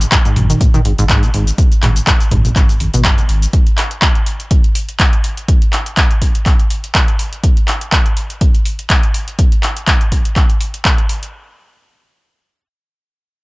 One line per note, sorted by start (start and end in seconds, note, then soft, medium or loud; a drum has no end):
0.01 closed hi-hat soft
0.01 shaker medium
0.12 0.16 G#2 loud
0.12 kick loud
0.12 clap loud
0.12 closed hi-hat medium
0.12 shaker soft
0.25 0.38 G#2 medium
0.25 closed hi-hat soft
0.25 shaker soft
0.36 0.54 G#1 medium
0.36 0.47 F#2 loud
0.36 mid tom medium
0.36 open hi-hat loud
0.50 0.62 D#3 medium
0.50 closed hi-hat medium
0.50 mid tom medium
0.50 shaker medium
0.61 0.68 G#2 loud
0.61 kick loud
0.61 closed hi-hat medium
0.61 shaker medium
0.74 0.80 D#3 loud
0.74 closed hi-hat soft
0.74 mid tom medium
0.74 shaker soft
0.85 0.94 G#1 medium
0.85 0.92 G#2 medium
0.85 open hi-hat loud
0.98 1.14 G#1 loud
0.98 1.05 G#2 loud
0.98 closed hi-hat medium
0.98 shaker medium
1.09 1.25 G#2 loud
1.09 kick loud
1.09 clap loud
1.09 closed hi-hat medium
1.09 shaker medium
1.23 1.29 B2 loud
1.23 closed hi-hat soft
1.23 shaker soft
1.34 1.51 G#1 medium
1.34 1.45 G#2 medium
1.34 open hi-hat loud
1.47 closed hi-hat soft
1.47 shaker medium
1.58 kick loud
1.58 closed hi-hat medium
1.58 shaker soft
1.72 closed hi-hat soft
1.72 shaker soft
1.83 2.00 G#1 loud
1.83 1.90 G#2 medium
1.83 clap medium
1.83 mid tom medium
1.83 open hi-hat loud
1.96 closed hi-hat soft
1.96 shaker medium
2.07 2.11 G#2 loud
2.07 kick loud
2.07 clap loud
2.07 closed hi-hat medium
2.07 shaker medium
2.20 closed hi-hat soft
2.20 shaker soft
2.31 2.49 G#1 medium
2.31 2.43 G#2 medium
2.31 kick medium
2.31 mid tom medium
2.31 open hi-hat loud
2.45 2.51 G#1 medium
2.45 closed hi-hat soft
2.45 mid tom medium
2.45 shaker medium
2.56 2.82 G#1 medium
2.56 kick loud
2.56 clap medium
2.56 open hi-hat medium
2.56 shaker soft
2.69 closed hi-hat soft
2.69 shaker soft
2.80 2.89 G#1 medium
2.80 2.88 G#2 loud
2.80 open hi-hat loud
2.94 3.10 G#1 loud
2.94 3.06 B2 loud
2.94 closed hi-hat soft
2.94 shaker medium
3.05 3.20 F#2 medium
3.05 kick loud
3.05 clap loud
3.05 closed hi-hat medium
3.05 shaker medium
3.18 3.24 G#3 medium
3.18 closed hi-hat soft
3.18 shaker soft
3.29 3.46 G#1 medium
3.29 open hi-hat loud
3.42 closed hi-hat soft
3.42 shaker medium
3.53 kick loud
3.53 closed hi-hat medium
3.67 closed hi-hat soft
3.78 clap medium
3.78 open hi-hat loud
3.91 closed hi-hat soft
4.02 kick loud
4.02 clap loud
4.02 closed hi-hat medium
4.15 closed hi-hat soft
4.26 open hi-hat loud
4.40 closed hi-hat soft
4.51 kick loud
4.51 closed hi-hat medium
4.64 closed hi-hat soft
4.75 open hi-hat loud
4.89 closed hi-hat soft
5.00 kick loud
5.00 clap loud
5.00 closed hi-hat medium
5.13 closed hi-hat soft
5.24 open hi-hat loud
5.37 closed hi-hat soft
5.48 kick loud
5.48 closed hi-hat medium
5.62 closed hi-hat soft
5.73 clap medium
5.73 open hi-hat loud
5.86 closed hi-hat soft
5.97 kick loud
5.97 clap loud
5.97 closed hi-hat medium
6.11 closed hi-hat soft
6.22 kick medium
6.22 open hi-hat loud
6.35 closed hi-hat soft
6.46 kick loud
6.46 clap medium
6.46 open hi-hat medium
6.59 closed hi-hat soft
6.70 open hi-hat medium
6.84 closed hi-hat medium
6.95 kick loud
6.95 clap loud
6.95 closed hi-hat medium
7.08 closed hi-hat soft
7.19 open hi-hat medium
7.33 closed hi-hat medium
7.44 kick loud
7.44 closed hi-hat medium
7.57 closed hi-hat soft
7.68 clap medium
7.68 open hi-hat medium
7.81 closed hi-hat medium
7.92 kick loud
7.92 clap loud
7.92 closed hi-hat medium
8.06 closed hi-hat soft
8.17 open hi-hat medium
8.30 closed hi-hat medium
8.41 kick loud
8.41 closed hi-hat medium
8.55 closed hi-hat soft
8.65 open hi-hat medium
8.79 closed hi-hat medium
8.90 kick loud
8.90 clap loud
8.90 closed hi-hat medium
9.03 closed hi-hat soft
9.14 open hi-hat medium
9.28 closed hi-hat medium
9.39 kick loud
9.39 closed hi-hat medium
9.52 closed hi-hat soft
9.63 clap medium
9.63 open hi-hat loud
9.77 closed hi-hat medium
9.87 kick loud
9.87 clap loud
9.87 closed hi-hat medium
10.01 closed hi-hat soft
10.12 kick medium
10.12 open hi-hat medium
10.25 closed hi-hat medium
10.36 kick loud
10.36 clap medium
10.36 open hi-hat medium
10.50 closed hi-hat soft
10.61 open hi-hat medium
10.74 closed hi-hat medium
10.85 kick loud
10.85 clap loud
10.85 closed hi-hat medium
10.98 closed hi-hat soft
11.09 open hi-hat medium
11.23 closed hi-hat medium